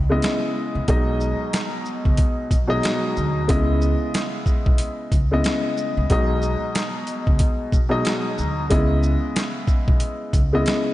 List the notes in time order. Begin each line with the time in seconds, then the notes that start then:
Already playing: C#2
0.09 C#3 G#3 B3 E4 D#5
0.22 snare, closed hi-hat
0.75 C2
0.88 B1 B2 F#3 G#3 D#4 D#5, kick, closed hi-hat
1.20 shaker
1.53 snare, closed hi-hat
1.85 shaker
2.05 C#2, kick
2.17 kick, closed hi-hat
2.51 B1, kick, closed hi-hat, shaker
2.67 B2 F#3 G#3 D#4 D#5
2.83 snare, closed hi-hat
3.16 D2, shaker
3.48 C#2 C#3 G#3 B3 E4 D#5, kick, closed hi-hat
3.81 shaker
4.14 snare, closed hi-hat
4.46 kick, shaker
4.66 B1, kick
4.78 closed hi-hat
5.12 C#2, kick, closed hi-hat, shaker
5.31 C#3 G#3 B3 E4 D#5
5.44 snare, closed hi-hat
5.77 shaker
5.97 C2
6.10 B1 B2 F#3 G#3 D#4 D#5, kick, closed hi-hat
6.42 shaker
6.75 snare, closed hi-hat
7.07 closed hi-hat, shaker
7.27 C#2, kick
7.39 kick, closed hi-hat
7.72 B1, kick, shaker
7.89 B2 F#3 G#3 D#4 D#5
8.05 snare, closed hi-hat
8.38 D2, shaker
8.69 C#2 C#3 G#3 B3 E4 D#5, kick, closed hi-hat
9.03 shaker
9.36 snare, closed hi-hat
9.68 kick, shaker
9.88 B1, kick
10.00 closed hi-hat
10.33 C#2, kick, closed hi-hat, shaker
10.52 C#3 G#3 B3 E4 D#5
10.66 snare, closed hi-hat